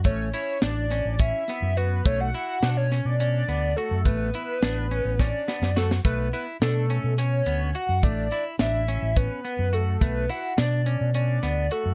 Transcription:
<<
  \new Staff \with { instrumentName = "Analog synth lead" } { \time 7/8 \key b \minor \tempo 4 = 106 cis''8 cis''8 d''4 e''4 b'8 | cis''16 fis''4 cis''8 d''16 d''4 a'8 | b'2 d''4 a'8 | b'8 b'8 a'4 cis''4 fis''8 |
d''8 d''8 e''4 b'4 a'8 | b'8 fis''8 d''4 d''4 a'8 | }
  \new Staff \with { instrumentName = "Clean electric guitar" } { \time 7/8 \key b \minor a8 e'8 d'8 cis'8 cis'8 b8 fis'8 | a8 e'8 d'8 cis'8 cis'8 b8 fis'8 | a8 e'8 d'8 cis'8 cis'8 b8 fis'8 | a8 e'8 d'8 cis'8 cis'8 b8 fis'8 |
a8 e'8 d'8 cis'8 cis'8 b8 fis'8 | a8 e'8 d'8 cis'8 cis'8 b8 fis'8 | }
  \new Staff \with { instrumentName = "Fingered electric bass" } { \clef bass \time 7/8 \key b \minor a,,8 r8 a,,8. a,,8 r8 fis,8. | b,,8 r8 b,8. b,8. d,8 r16 fis,16 | a,,8 r8 a,,8. a,,8 r8 fis,8. | b,,8 r8 b,8. b,8. d,8 r16 fis,16 |
a,,8 r8 a,,8. a,,8 r8 fis,8. | b,,8 r8 b,8. b,8. d,8 r16 fis,16 | }
  \new DrumStaff \with { instrumentName = "Drums" } \drummode { \time 7/8 <hh bd>8 hh8 <hh sn>8 <hh sn>8 <hh bd>8 <hh sn>8 hh8 | <hh bd>8 hh8 <hh sn>8 <hh sn>8 hh8 hh8 hh8 | <hh bd>8 hh8 <hh sn>8 hh8 <bd sn>8 sn16 sn16 sn16 sn16 | <hh bd>8 hh8 <hh sn>8 hh8 <hh sn>8 hh8 hh8 |
<hh bd>8 hh8 <hh sn>8 hh8 <hh bd>8 hh8 hh8 | <hh bd>8 hh8 <hh sn>8 hh8 hh8 <hh sn>8 hh8 | }
>>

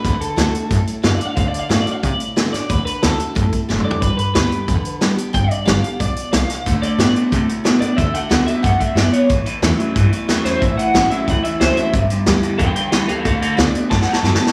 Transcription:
<<
  \new Staff \with { instrumentName = "Clean electric guitar" } { \time 4/4 \key d \major \tempo 4 = 182 b'8 a'2 r8 \tuplet 3/2 { f''8 d''8 f''8 } | \tuplet 3/2 { f''8 d''8 f''8 f''8 d''8 f''8 } d''4 r8 d''8 | b'8 b'8 a'2 r8 d''8 | b'8 b'8 b'2 r4 |
g''8 d''8 f''4 d''4 f''4 | r8 d''4 r2 d''8 | e''8 fis''4 e''8 fis''8 e''8 d''8 cis''8 | r2. r8 c''8 |
e''8 fis''4 e''8 fis''8 e''8 c''8 e''8 | r2 <b' g''>8 <b' g''>8 <b' g''>8 <a' f''>8 | <a' f''>8 <a' f''>8 d''8 r8 \tuplet 3/2 { a''8 fis''8 a''8 a''8 a''4 } | }
  \new Staff \with { instrumentName = "Steel-string acoustic guitar" } { \time 4/4 \key d \major << { r4 <d a d' fis'>8 <d' fis'>8 r4 <d a d' fis'>8 <d' fis'>8 | r4 <d a d' fis'>8 <d' fis'>8 r4 <d a d' fis'>8 <d' fis'>8 | r4 <d a d' fis'>8 <d' fis'>8 r4 <d a d' fis'>4 | r4 <d g b g'>8 <b g'>8 r4 <d g b g'>8 <b g'>8 |
r4 <d g b g'>8 <b g'>8 r2 | r4 <d a d' fis'>8 <d' fis'>8 r4 <d a d' fis'>8 <d' fis'>8 | r4 <d a d' fis'>8 <d' fis'>8 r2 | r4 <e a cis' e'>8 <cis' e'>8 r4 <e a cis' e'>8 <cis' e'>8 |
r4 <e a cis' e'>8 <cis' e'>8 r4 <e a cis' e'>8 <cis' e'>8 | r4 <d g b g'>4 r4 <d g b g'>8 <b g'>8 | r4 <d a d' fis'>8 <d' fis'>8 r4 <d a d' fis'>8 <d' fis'>8 | } \\ { d2 a,2 | d2 a,2 | d2 a,2 | g,2 d2 |
g,2 b,4 c4 | d2 a,2 | d2 c4 b,4 | a,2 e,2 |
a,2 e,2 | g,2 d2 | d2 a,2 | } >> }
  \new Staff \with { instrumentName = "Clean electric guitar" } { \clef bass \time 4/4 \key d \major r1 | r1 | r1 | r1 |
r1 | <d a>8 <d a>8 <d b>8 <d b>8 <d a>8 <d a>8 <d b>8 <d b>8 | <d a>8 <d a>8 <d b>8 <d b>8 <d a>8 <d a>8 <d b>8 <d b>8 | <a, e>8 <a, e>8 <a, fis>8 <a, fis>8 <a, e>8 <a, e>8 <a, fis>8 <a, fis>8 |
<a, e>8 <a, e>8 <a, fis>8 <a, fis>8 <a, e>8 <a, e>8 <a, fis>8 <a, fis>8 | <g, d>8 <g, d>8 <g, e>8 <g, e>8 <g, d>8 <g, d>8 <g, e>8 <g, e>8 | <d a>8 <d a>8 <d b>8 <d b>8 <d a>8 <d a>8 <d b>8 <d b>8 | }
  \new Staff \with { instrumentName = "Upright bass" } { \clef bass \time 4/4 \key d \major d,8 r8 d,8 r8 fis,8 r8 fis,8 r8 | d,8 r8 a,8 r8 c8 r8 a,8 a,8 | d,8 r8 d,8 r8 fis,8 r8 fis,,8 r8 | g,,8 r8 d,8 r8 e,8 r8 d,8 d,8 |
g,,8 r8 g,,8 r8 b,,8 r8 c,8 r8 | d,8 r8 a,8 r8 c8 r8 a,8 a,8 | d,8 r8 d,8 r8 fis,8 r8 fis,8 r8 | a,,8 r8 e,8 r8 g,8 r8 e,8 e,8 |
a,,8 r8 a,,8 r8 cis,8 r8 cis,8 r8 | g,,8 r8 d,8 r8 e,8 r8 d,8 d,8 | d,8 r8 d,8 r8 fis,8 r8 fis,8 r8 | }
  \new DrumStaff \with { instrumentName = "Drums" } \drummode { \time 4/4 <hh bd>8 hh8 <hh sn>8 hh8 <hh bd>8 hh8 <hh sn>8 hh8 | <hh bd>8 hh8 <hh sn>8 hh8 <hh bd>8 hh8 <hh sn>8 <hh sn>8 | <hh bd>8 hh8 <hh sn>8 hh8 <hh bd>8 <hh bd>8 \tuplet 3/2 { sn8 toml8 tomfh8 } | <hh bd>8 hh8 <hh sn>8 hh8 <hh bd>8 hh8 <hh sn>8 hh8 |
<hh bd>8 hh8 <hh sn>8 hh8 <hh bd>8 hh8 <hh sn>8 <hh sn>8 | <hh bd>8 hh8 <hh sn>8 hh8 <hh bd>8 hh8 <hh sn>8 hh8 | <hh bd>8 hh8 <hh sn>8 hh8 <hh bd>8 <hh bd>8 <hh sn>8 hh8 | <hh bd>8 hh8 <hh sn>8 hh8 <hh bd>8 hh8 <hh sn>8 <hh sn>8 |
<hh bd>8 hh8 <hh sn>8 hh8 <hh bd>8 hh8 <hh sn>8 hh8 | <hh bd>8 hh8 <hh sn>8 hh8 <hh bd>8 hh8 <hh sn>8 hh8 | <hh bd>8 hh8 <hh sn>8 hh8 \tuplet 3/2 { <bd sn>8 sn8 sn8 sn8 sn8 sn8 } | }
>>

